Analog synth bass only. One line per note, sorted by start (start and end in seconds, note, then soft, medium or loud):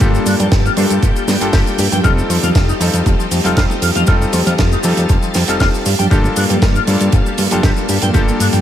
0.01 0.19 G1 loud
0.26 0.35 G2 medium
0.40 0.48 G2 medium
0.52 0.69 G1 medium
0.77 0.86 G2 loud
0.91 0.99 G2 loud
1.03 1.12 G1 medium
1.28 1.37 G2 medium
1.41 1.51 G1 soft
1.54 1.63 G1 medium
1.79 1.88 G2 medium
1.92 2.00 G2 medium
2.04 2.22 F1 loud
2.30 2.39 F2 loud
2.43 2.51 F2 medium
2.55 2.73 F1 medium
2.80 2.90 F2 loud
2.94 3.02 F2 medium
3.06 3.15 F1 medium
3.31 3.40 F2 medium
3.45 3.55 F1 soft
3.57 3.66 F1 loud
3.82 3.91 F2 medium
3.96 4.04 F2 medium
4.08 4.25 F1 loud
4.33 4.42 F2 loud
4.47 4.55 F2 medium
4.59 4.76 F1 medium
4.84 4.93 F2 loud
4.98 5.06 F2 loud
5.10 5.19 F1 medium
5.35 5.44 F2 medium
5.48 5.58 F1 soft
5.60 5.69 F1 medium
5.86 5.95 G2 loud
6.00 6.08 G2 medium
6.11 6.29 G1 loud
6.37 6.46 G2 medium
6.50 6.58 G2 loud
6.62 6.80 G1 medium
6.88 6.97 G2 loud
7.01 7.09 G2 loud
7.13 7.22 G1 medium
7.38 7.47 G2 medium
7.52 7.61 G1 soft
7.64 7.73 G1 medium
7.89 7.98 G2 loud
8.02 8.11 G2 medium
8.15 8.32 G1 loud
8.40 8.49 G2 medium
8.53 8.61 G2 medium